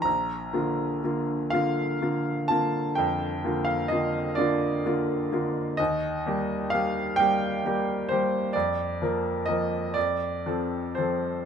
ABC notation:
X:1
M:12/8
L:1/16
Q:3/8=42
K:Bb
V:1 name="Grand piano"
b6 f4 a2 g3 f e2 d2 z4 | e4 f2 g4 c2 d4 e2 d4 c2 |]
V:2 name="Grand piano"
B,,,2 [D,B,F]2 [D,B,F]2 [D,B,F]2 [D,B,F]2 [D,B,F]2 F,,2 [D,B,F]2 [D,B,F]2 [D,B,F]2 [D,B,F]2 [D,B,F]2 | E,,2 [G,B,G]2 [G,B,G]2 [G,B,G]2 [G,B,G]2 [G,B,G]2 F,,2 [F,B,B]2 [F,B,B]2 F,,2 [F,CA]2 [F,CA]2 |]